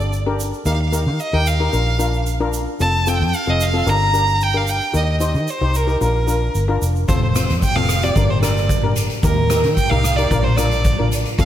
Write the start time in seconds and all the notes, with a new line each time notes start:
Already playing: G1 D4 G4 D5
0.00 shaker
0.13 shaker
0.26 D4 G4 A#4
0.40 shaker
0.53 shaker
0.66 D#2 D#4 G4 A#4 F5, shaker
0.73 F5
0.81 F5
0.88 F5
0.92 D#4 G4 A#4 F5, shaker
1.04 D#3 F5
1.20 D#5, shaker
1.33 D#2 D#4 G4 A#4 G5
1.46 F5, shaker
1.60 D#4 G4 A#4
1.73 A#1 D4 F4 A#4, shaker
1.99 D4 F4 A#4, shaker
2.14 shaker
2.27 shaker
2.40 D4 F4 A#4
2.53 shaker
2.80 F1 C4 F4 A4 A5, shaker
3.07 C4 F4 A4 G5, shaker
3.20 F2
3.33 F5, shaker
3.47 F1 C4 F4 A4 D#5
3.61 F5, shaker
3.73 C4 F4 A4
3.87 G1 D4 G4 A#4 A#5, shaker
4.13 D4 G4 A#4, shaker
4.28 shaker
4.41 G5, shaker
4.54 D4 G4 A#4 F5
4.67 G5, shaker
4.81 shaker
4.93 D#2 D#4 G4 A#4 D#5, shaker
5.04 D#5
5.12 D#5
5.19 D#4 G4 C5 D#5, shaker
5.27 D#5
5.34 D#3 D#5, shaker
5.48 C5, shaker
5.61 C2 D#4 G4 C5
5.74 A#4, shaker
5.87 D#4 G4 A#4, shaker
6.01 A#1 D4 F4 A#4, shaker
6.27 D4 F4 A#4, shaker
6.55 G1, shaker
6.68 D4 F4 A#4
6.82 F1, shaker
6.96 shaker
7.08 F1 C4 F4 A4 C5, kick, closed hi-hat, shaker
7.16 C5
7.23 C5
7.30 C5
7.35 C4 F4 C5, cross-stick, closed hi-hat, shaker
7.45 C5
7.49 F2, closed hi-hat
7.62 G5, kick, closed hi-hat, shaker
7.76 F1 C4 F4 A4 F5, cross-stick
7.89 cross-stick, closed hi-hat, shaker
8.03 C4 F4 G4 D5, closed hi-hat
8.16 G1 D4 G4 A#4, kick, closed hi-hat, shaker
8.30 C5
8.42 D4 G4 A#4 D5, cross-stick, closed hi-hat, shaker
8.56 closed hi-hat, shaker
8.69 kick, closed hi-hat, shaker
8.83 D4 G4 A#4
8.96 closed hi-hat, shaker
9.10 closed hi-hat, shaker
9.23 D#2 D#4 G4 A#4, kick, closed hi-hat, shaker
9.50 D#4 G4 A#4, cross-stick, closed hi-hat, shaker
9.64 D#3, closed hi-hat
9.76 G5, kick, closed hi-hat, shaker
9.90 C2 D#4 G4 A#4 F5, cross-stick
10.04 cross-stick, closed hi-hat, shaker
10.16 D#4 G4 A#4 D5, closed hi-hat
10.31 A#1 D4 F4 A#4, kick, closed hi-hat, shaker
10.43 C5
10.56 D4 F4 A#4 D5, cross-stick, closed hi-hat, shaker
10.71 closed hi-hat, shaker
10.85 kick, closed hi-hat, shaker
10.99 D4 F4 A#4
11.12 closed hi-hat, shaker
11.25 closed hi-hat, shaker
11.39 F1 C4 F4 A4 F5, kick, closed hi-hat, shaker